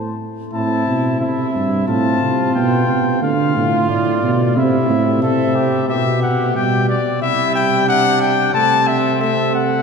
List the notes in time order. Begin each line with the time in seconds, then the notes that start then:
Already playing: A2 A3 C5 A5
0.53 A2 C4 E4 A5
0.88 B2
1.20 C3 C4 E4 E5
1.55 G2
1.88 A2 C4 F4 A5
2.22 C3
2.55 B2 B3 G5
2.89 C3
3.22 D3 A3 F4 F5
3.56 A2
3.89 A2 D5
4.23 B2
4.56 C3 C4 E4 E5
4.90 A2
5.22 C3 A4 E5
5.55 G4
5.88 B2 B3 G4 E5
6.23 F#5
6.55 B2 G3 G5
6.89 D5
7.22 C3 G3 E4 E5
7.55 G5
7.88 D4 F#5
8.22 G5
8.54 C3 A3 C4 A5
8.88 E5
9.21 A3 E5
9.55 F#5